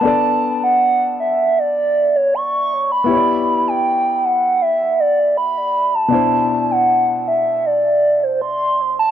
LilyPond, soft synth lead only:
\new Staff \with { instrumentName = "Soft synth lead" } { \time 4/4 \key b \minor \tempo 4 = 79 a''8. fis''8. e''8 d''8. cis''16 cis'''8. b''16~ | b''8. g''8. fis''8 e''8 d''8 b''8. a''16~ | a''8. fis''8. e''8 d''8. c''16 c'''8. a''16 | }